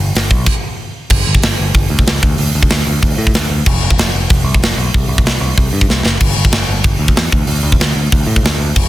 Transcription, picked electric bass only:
0.00 0.12 G1 loud
0.15 0.29 G1 medium
0.31 0.44 B1 medium
1.10 1.22 G1 loud
1.27 1.39 G1 medium
1.42 1.54 G1 medium
1.59 1.71 G1 loud
1.74 1.86 G1 loud
1.90 2.02 D2 loud
2.07 2.18 C#2 medium
2.23 2.35 D2 medium
2.39 2.50 D2 loud
2.55 2.67 D2 loud
2.72 2.83 D2 loud
2.87 2.98 D2 medium
3.03 3.14 D2 loud
3.18 3.30 A2 loud
3.34 3.45 D2 medium
3.50 3.62 D2 loud
3.66 3.78 F1 loud
3.82 3.93 F1 loud
3.98 4.09 F1 medium
4.13 4.25 F1 medium
4.30 4.42 F1 loud
4.44 4.56 C2 loud
4.60 4.72 F1 loud
4.77 4.89 B1 medium
4.94 5.06 C2 loud
5.08 5.20 C2 loud
5.24 5.36 C2 medium
5.40 5.52 C2 medium
5.57 5.69 C2 loud
5.73 5.85 G2 loud
5.89 6.00 C2 medium
6.05 6.16 F#1 medium
6.21 6.33 G1 medium
6.36 6.48 G1 medium
6.52 6.64 G1 medium
6.68 6.80 G1 loud
6.84 6.96 G1 loud
6.99 7.11 D2 loud
7.16 7.28 E2 medium
7.33 7.44 D2 medium
7.48 7.60 D2 medium
7.63 7.75 D2 loud
7.80 7.92 D2 loud
7.95 8.07 D2 medium
8.12 8.24 D2 loud
8.27 8.39 A2 loud
8.43 8.55 D2 loud
8.58 8.70 D2 medium
8.76 8.87 F1 medium

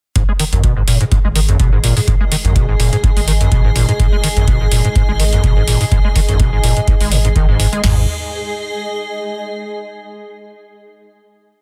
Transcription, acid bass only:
0.16 0.23 G#2 medium
0.29 0.32 G#3 medium
0.40 0.44 D#3 medium
0.53 0.62 F#2 medium
0.64 0.74 B2 medium
0.77 0.83 G#2 medium
0.88 0.98 A#2 medium
1.01 1.04 G#2 loud
1.12 1.19 G#2 medium
1.25 1.28 G#3 medium
1.35 1.40 D#3 medium
1.49 1.58 F#2 medium
1.60 1.70 B2 medium
1.73 1.79 G#2 medium
1.84 1.94 A#2 medium
1.97 2.00 G#2 loud
2.08 2.15 G#2 medium
2.21 2.24 G#3 medium
2.32 2.36 D#3 medium
2.45 2.54 F#2 medium
2.56 2.66 B2 medium
2.69 2.75 G#2 medium
2.80 2.90 A#2 medium
2.93 2.96 G#2 loud
3.04 3.11 G#2 medium
3.17 3.20 G#3 medium
3.28 3.32 D#3 medium
3.40 3.50 F#2 medium
3.52 3.62 B2 medium
3.65 3.71 G#2 medium
3.76 3.86 A#2 medium
3.89 3.92 G#2 loud
4.00 4.07 G#2 medium
4.13 4.16 G#3 medium
4.24 4.28 D#3 medium
4.37 4.46 F#2 medium
4.48 4.58 B2 medium
4.61 4.67 G#2 medium
4.72 4.82 A#2 medium
4.85 4.88 G#2 loud
4.96 5.03 G#2 medium
5.09 5.12 G#3 medium
5.20 5.24 D#3 medium
5.33 5.42 F#2 medium
5.44 5.54 B2 medium
5.57 5.63 G#2 medium
5.68 5.78 A#2 medium
5.81 5.84 G#2 loud
5.92 5.99 G#2 medium
6.05 6.08 G#3 medium
6.16 6.20 D#3 medium
6.29 6.38 F#2 medium
6.40 6.50 B2 medium
6.53 6.59 G#2 medium
6.64 6.74 A#2 medium
6.77 6.80 G#2 loud
6.88 6.95 G#2 medium
7.01 7.13 G#3 medium
7.12 7.19 F#2 medium
7.25 7.28 G#2 medium
7.36 7.46 D#3 medium
7.49 7.58 G#2 loud
7.60 7.67 G#2 loud
7.73 7.82 G#3 medium
7.84 8.06 G#2 medium

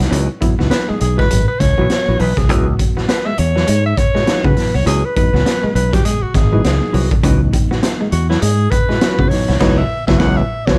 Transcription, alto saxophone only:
0.70 0.91 B4 medium
0.89 1.01 G#4 medium
1.01 1.18 G#4 medium
1.19 1.46 B4 medium
1.48 1.62 B4 loud
1.60 2.22 C#5 loud
2.21 2.39 B4 medium
2.38 2.67 G#4 medium
3.08 3.28 B4 medium
3.26 3.40 E5 loud
3.38 3.85 C#5 loud
3.86 3.99 E5 loud
3.97 4.47 C#5 loud
4.45 4.77 B4 medium
4.75 4.86 C#5 medium
4.87 5.06 G#4 medium
5.05 5.16 B4 medium
5.17 5.72 B4 loud
5.75 5.95 B4 medium
5.93 6.06 G4 medium
6.05 6.24 G#4 medium
6.22 6.37 F#4 medium
6.35 7.24 G#4 medium
8.12 8.29 F#4 medium
8.29 8.43 E4 medium
8.41 8.72 G#4 loud
8.70 9.30 B4 loud
9.29 9.58 C#5 medium
9.59 9.79 C#5 loud
9.78 10.06 E5 loud
10.07 10.20 E5 medium
10.19 10.38 F#5 loud
10.37 10.67 E5 medium
10.66 10.79 C#5 loud

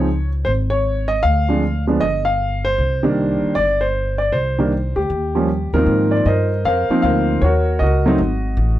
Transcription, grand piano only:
0.00 0.28 C#5 medium
0.45 0.51 C5 medium
0.70 1.11 C#5 medium
1.08 1.22 D#5 medium
1.23 1.83 F5 loud
1.49 1.61 F3 medium
1.49 1.62 G#3 soft
1.49 1.62 C4 soft
1.49 1.62 D4 medium
1.87 2.00 F3 medium
1.87 2.00 G#3 medium
1.87 2.00 B3 medium
1.87 2.01 D4 medium
2.00 2.24 D#5 medium
2.25 2.65 F5 medium
2.65 3.52 C5 loud
3.03 3.53 D#3 medium
3.03 3.53 G3 medium
3.03 3.53 A#3 medium
3.03 3.54 D4 medium
3.55 3.81 D5 loud
3.81 4.17 C5 medium
4.18 4.32 D5 medium
4.32 4.98 C5 medium
4.59 4.71 D#3 medium
4.59 4.71 G3 medium
4.59 4.71 A#3 medium
4.59 4.71 D4 medium
4.96 5.69 G4 medium
5.35 5.48 F3 medium
5.35 5.48 G3 medium
5.35 5.48 A#3 soft
5.35 5.48 C#4 medium
5.74 6.24 G#2 medium
5.74 6.24 D#3 soft
5.74 6.24 F3 soft
5.74 6.24 A#3 soft
5.74 6.24 C4 medium
5.74 6.48 D#4 medium
5.74 6.48 F4 medium
5.74 6.13 A#4 medium
6.11 6.25 D5 medium
6.26 6.66 A#4 medium
6.26 6.66 C5 medium
6.26 6.62 D#5 medium
6.65 7.04 A#4 medium
6.65 7.03 C5 medium
6.65 7.01 F5 medium
6.90 7.40 F3 medium
6.90 7.40 A#3 medium
6.90 7.40 C4 medium
6.90 7.40 D#4 medium
7.02 7.40 A#4 medium
7.02 7.40 C5 medium
7.02 7.43 F5 medium
7.42 7.81 F#4 medium
7.42 7.81 A#4 medium
7.42 7.82 C#5 medium
7.79 8.79 F#4 medium
7.79 8.18 A#4 medium
7.79 8.78 D#5 medium
8.06 8.18 F#3 medium
8.06 8.18 A3 medium
8.06 8.19 C4 medium
8.06 8.19 D#4 medium

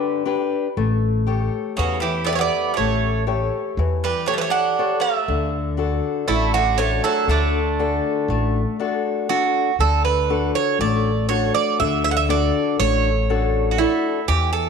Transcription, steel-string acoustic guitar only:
0.00 0.24 D3 medium
0.00 0.24 D4 soft
0.00 0.25 G4 soft
0.00 0.25 B4 medium
0.26 0.66 D4 soft
0.26 0.67 G4 soft
0.26 0.67 B4 soft
0.77 1.75 A3 medium
1.27 2.07 G4 soft
1.27 2.08 A4 soft
1.27 2.08 C#5 soft
1.78 2.75 E3 medium
2.28 3.08 G4 soft
2.28 3.08 A4 soft
2.28 3.09 E5 soft
2.79 3.76 A3 medium
3.27 4.08 G4 soft
3.27 4.08 A4 soft
3.27 4.08 C#5 medium
3.79 4.76 E3 medium
4.28 4.78 G4 soft
4.28 4.78 A4 soft
4.28 4.78 C#5 medium
4.79 5.19 G4 soft
4.79 5.19 A4 soft
4.79 5.19 C#5 medium
5.28 6.26 D3 medium
5.77 6.58 D4 soft
5.77 6.58 F#4 soft
5.77 6.59 A4 soft
6.27 7.25 A3 medium
6.78 7.58 D4 soft
6.78 7.58 F#4 soft
6.78 7.59 A4 medium
7.28 8.26 D3 medium
7.79 8.59 D4 medium
7.79 8.59 F#4 soft
7.79 8.60 A4 medium
8.30 9.26 A3 medium
8.79 9.29 D4 soft
8.79 9.29 F#4 soft
8.79 9.29 A4 medium
9.30 9.70 D4 medium
9.30 9.70 F#4 soft
9.30 9.70 A4 medium
9.80 10.76 D3 medium
10.30 11.09 D4 soft
10.30 11.09 F#4 soft
10.30 11.10 A4 medium
10.81 11.76 A3 medium
11.30 12.09 D4 soft
11.30 12.09 F#4 soft
11.30 12.10 A4 medium
11.80 12.76 D3 medium
12.29 13.08 D4 medium
12.29 13.09 F#4 soft
12.29 13.09 A4 medium
12.80 13.76 A3 medium
13.30 13.79 D4 soft
13.30 13.79 F#4 soft
13.30 13.79 A4 medium
13.80 14.19 D4 medium
13.80 14.19 F#4 soft
13.80 14.19 A4 medium
14.29 14.69 E3 medium

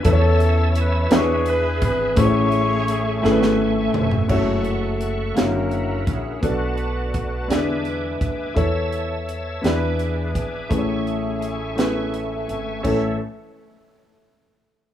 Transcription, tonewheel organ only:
0.00 1.09 E5 medium
0.04 1.10 C#5 medium
0.04 1.10 A5 medium
0.04 1.10 E6 medium
1.12 2.17 B4 medium
1.12 4.27 E5 medium
1.12 4.27 G#5 medium
2.18 4.28 A3 medium
2.18 4.29 C#6 medium
4.30 5.36 A4 medium
4.30 6.41 E5 medium
4.30 6.41 F#5 medium
4.30 5.36 C#6 medium
5.35 6.41 A#4 medium
6.43 8.55 B4 medium
6.43 7.49 F#5 medium
6.43 7.48 A5 medium
7.50 12.82 E5 medium
7.50 8.56 G#5 medium
7.50 8.56 D6 medium
8.57 9.63 C#5 medium
8.57 9.63 A5 medium
8.57 9.63 E6 medium
9.64 10.70 B4 medium
9.64 12.82 G#5 medium
9.64 10.70 D6 medium
10.69 12.82 A3 medium
10.69 12.82 C#6 medium
12.83 13.17 A3 medium
12.83 13.17 A4 medium
12.83 13.17 C#5 medium
12.83 13.17 E5 medium

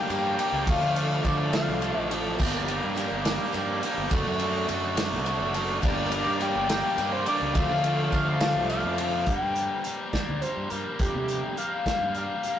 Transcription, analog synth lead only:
0.00 0.71 G5 loud
0.70 1.25 F5 loud
1.25 1.51 D5 medium
1.54 1.99 F5 medium
1.99 2.14 D#5 medium
5.85 6.43 D5 loud
6.42 7.14 G5 loud
7.12 7.26 C5 loud
7.28 7.57 D5 loud
7.55 8.12 F5 loud
8.13 8.66 F5 medium
8.69 9.29 F5 loud
9.27 9.85 G5 medium
10.13 10.43 D5 medium
10.41 10.72 C5 medium
10.70 10.99 A#4 medium
11.01 11.54 G4 loud
11.58 12.59 F5 loud

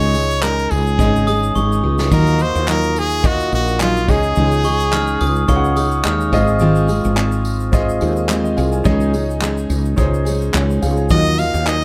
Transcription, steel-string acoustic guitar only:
0.00 0.15 C#3 medium
0.00 0.15 G#3 medium
0.00 0.15 C#4 medium
0.00 0.15 D#4 medium
0.00 0.13 G#4 medium
0.14 0.43 C#4 soft
0.14 0.43 D#4 soft
0.14 0.43 G#4 medium
0.43 0.99 G#3 medium
0.43 0.99 C#4 medium
0.43 1.00 D#4 medium
0.43 1.00 G#4 medium
0.99 1.27 G#2 medium
0.99 1.27 C#3 medium
0.99 1.28 G#3 medium
0.99 1.28 C#4 medium
0.99 1.27 D#4 medium
0.99 1.26 G#4 medium
1.27 1.54 G#3 soft
1.27 1.55 C#4 soft
1.27 1.56 D#4 soft
1.27 1.55 G#4 medium
1.55 1.83 G#3 medium
1.55 1.84 C#4 medium
1.55 1.83 D#4 medium
1.55 1.82 G#4 medium
1.83 2.12 G#3 soft
1.83 2.12 C#4 medium
1.83 2.11 D#4 medium
1.83 2.12 G#4 medium
2.11 2.40 D#3 medium
2.11 2.40 F#3 medium
2.11 2.40 D#4 medium
2.11 2.39 F4 medium
2.11 2.38 A#4 medium
2.41 2.67 D#4 soft
2.41 2.68 F4 soft
2.68 3.52 F#3 medium
2.68 3.54 D#4 medium
2.68 3.52 F4 medium
2.68 3.50 A#4 medium
3.51 3.79 D#4 soft
3.51 3.81 F4 soft
3.51 3.80 A#4 medium
3.80 4.08 F#3 medium
3.80 4.08 D#4 medium
3.80 4.08 F4 medium
3.80 4.07 A#4 medium
4.07 4.36 C#4 soft
4.07 4.36 D#4 soft
4.07 4.36 G#4 soft
4.36 4.65 C#3 medium
4.36 4.65 G#3 medium
4.36 4.65 C#4 medium
4.36 4.64 D#4 medium
4.36 4.63 G#4 loud
4.64 4.92 C#4 soft
4.64 4.92 D#4 medium
4.64 4.92 G#4 medium
4.92 6.03 G#3 medium
4.92 5.77 C#4 medium
4.92 5.77 D#4 medium
4.92 5.75 G#4 medium
5.75 6.03 C#4 soft
5.75 6.04 D#4 medium
5.75 6.04 G#4 medium
6.03 6.32 G#3 medium
6.03 6.33 C#4 medium
6.03 6.33 D#4 medium
6.03 6.31 G#4 medium
6.32 6.59 G#3 medium
6.32 6.60 C4 medium
6.32 6.60 F4 medium
6.32 6.60 G#4 medium
6.60 6.89 G#2 medium
6.60 6.89 D#3 medium
6.60 6.89 G#3 medium
6.60 6.89 C4 loud
6.60 6.87 F4 loud
6.60 6.87 G#4 loud
6.88 7.15 G#3 medium
6.88 7.16 C4 soft
6.88 7.17 F4 medium
6.88 7.17 G#4 medium
7.16 8.03 G#3 medium
7.16 8.01 C4 medium
7.16 8.00 F4 medium
7.16 8.00 G#4 medium
8.00 8.27 G#3 soft
8.00 8.29 C4 medium
8.00 8.29 F4 medium
8.00 8.29 G#4 medium
8.29 8.57 G#3 medium
8.29 8.57 C4 medium
8.29 8.56 F4 medium
8.29 8.55 G#4 medium
8.57 8.85 G#3 soft
8.57 8.86 C4 medium
8.57 8.86 F4 medium
8.57 8.85 G#4 medium
8.86 9.14 C#3 medium
8.86 9.14 G#3 loud
8.86 9.14 C#4 loud
8.86 9.13 D#4 loud
8.86 9.12 G#4 loud
9.13 9.41 C#4 medium
9.13 9.42 D#4 medium
9.13 9.42 G#4 medium
9.41 10.26 G#3 medium
9.41 10.26 C#4 medium
9.41 10.26 D#4 medium
9.41 10.24 G#4 medium
10.25 10.53 C#4 soft
10.25 10.54 D#4 soft
10.25 10.54 G#4 medium
10.53 10.82 G#3 medium
10.53 10.83 C#4 medium
10.53 10.82 D#4 medium
10.53 10.81 G#4 medium
10.82 11.11 C#4 soft
10.82 11.10 D#4 medium
10.82 11.11 G#4 medium
11.10 11.38 D#3 medium
11.10 11.39 F#3 medium
11.10 11.39 D#4 medium
11.10 11.38 F4 medium
11.10 11.36 A#4 medium
11.38 11.66 D#4 soft
11.38 11.67 F4 soft
11.38 11.66 A#4 medium
11.66 11.84 F#3 medium
11.66 11.84 D#4 medium
11.66 11.84 F4 medium
11.66 11.84 A#4 medium

